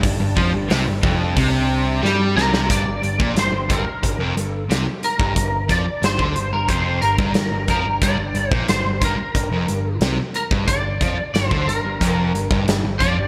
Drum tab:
HH |o---o---o-------|x-x-x-x-x-x-x-x-|x-x-x-x-x-x-x-x-|x-x-x-x-x-x-x-x-|
SD |----o-------o-oo|----o-------o---|----o-------o---|----o-------o---|
BD |o-o---o-o-------|o--o--o-o------o|o-o--o--o--o--o-|o--o--o-o------o|

HH |x-x-x-x-x-x-x-x-|
SD |----o-------o---|
BD |o-o--o--o--o--o-|